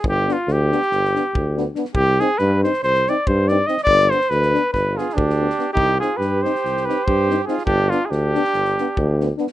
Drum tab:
SD |--o-o-ooooo---o-oo|--o-o-ooooo---o-oo|-oooooo-o-oo-o-oo-|--o-o-ooooo---o-oo|
BD |o-----------o-----|o-----------o-----|o-------o---o-----|o-----------o-----|

SD |--o-o-ooooo---o-oo|
BD |o-----------o-----|